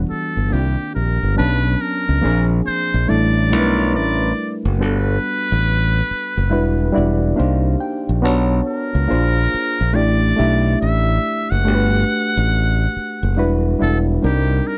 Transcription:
Already playing: E3 G3 B3 D4 F#4
0.10 A4, muted fingered electric bass stroke
0.37 G1
0.50 C2 D#3 A#3 C4 D4 F4 G4
0.59 G4
0.95 A#1 A#4
1.23 G1
1.35 F#3 B3 C#4 D4 B4 A5
1.40 B1
1.81 A#4
2.09 C#2
2.21 A#1 F3 A#3 C4 D4 G#4
2.66 C5, muted fingered electric bass stroke
2.94 A#1
3.07 A1 G3 A3 D4 E4 A4 D5
3.50 B1 G3 A3 D4 E4 A#4
3.59 B4
3.95 A1 D5
4.65 F#1
4.78 G1 G3 B3 D4 F#4 A4 B4
5.52 A1
6.11 muted fingered electric bass stroke
6.37 F#1
6.50 G3 D4 E4 F#4 B4
6.54 E1
6.93 G3 D4 E4 F#4 D5
6.97 E1
7.36 C2 A#3 D4 D#4 G4 C5 F5
7.80 G5
8.09 A#1
8.22 B1 B3 D4 F#4 C#5 A5
8.67 A#4
8.95 C#2
9.08 A#1 A#3 D4 F4 G#4 C5
9.54 muted fingered electric bass stroke
9.81 A#1
9.93 A1 A3 D4 E4 G4 D5
10.36 B1 A3 D4 E4 G4 E5
10.81 A1 E5
11.50 F#1 F#5
11.65 G1 A3 D4 F#4 G4 A4
11.75 B4
12.37 A1
12.96 muted fingered electric bass stroke
13.23 F#1
13.36 E1 G3 D4 E4 F#4 B4
13.79 E1 G3 D4 E4 F#4 A4
14.22 C2 G3 C4 D4 D#4 G4 A#4
14.67 A#4

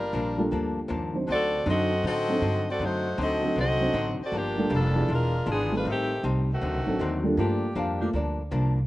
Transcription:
Already playing: G1 G3 D4 F4 A#4
0.13 A#1 G2 F3 A#3 D4
0.38 G3 A#3 D4 F4 A4
0.51 D2 G2 F3 A#3 D4
0.88 D#2 G2 F3 A#3 D4
1.14 F#3 C4 D4 D#4 C5
1.27 D2 D3 F#3 C4 D#4 F#4 A4 D5
1.66 F#2 D3 F#3 C4 D4 D#4 F#4 A4 D#5
2.03 A2 D3 F#3 C4 D#4 F#4 A4 D#5
2.28 F#3 C4 D4 D#4 A4
2.41 G2 D3 F#3 C4 D#4
2.70 C4 F#4 A4 D5
2.79 F#2 D3 F#3 C4 D#4
2.83 A3 F#4 C5
3.18 D2 D3 F#3 C4 D#4 F#4 A4 D#5
3.42 F#3 C4 D4 D#4 A4
3.55 C2 D3 F#3 C4 D#4 F#4 A4 D#5
3.80 F#3 C4 D4 D#4 C5
3.93 A1 D3 F#3 C4 D#4
4.19 C4 A4 D5, muted upright bass stroke
4.23 F#4
4.32 G1 G2 F3 A#3 D4 G4
4.36 A#3
4.58 G3 A#3 D4 F4 A4
4.70 F1 G2 F3 A#3 D4
4.74 G3 D4 F4 A4
4.95 F3 B3 D4 E4 G#4
5.08 E1 E3 G#3 D4 F4 A#4
5.46 G#1 E3 F3 G#3 B3 D4 F4 G#4
5.72 G3 G#3 A3 C4 D4 D#4 F4 A4 B4
5.85 A1 A2 D#3 G3 A3 C4 D#4 G4
6.23 C2 A2 G3 C4 D#4
6.51 D#3 A3 C4 F#4
6.61 D2 D3 F#3 C4 D#4
6.74 C2
6.87 A1 F#3 C4 D4 D#4 A4
6.99 D#2 D3 F#3 C4 D#4
7.24 G3 A#3 D4 F4 A4
7.37 G2 F3 A3 A#3 D4 F4 G4
7.75 F2 G2 F3 A#3 D4 F5
8.00 F3 A3 A#3 D4 F4 G4
8.13 D2 G2 F3 A#3 D4 D5
8.51 C2 G2 F3 A#3 D4

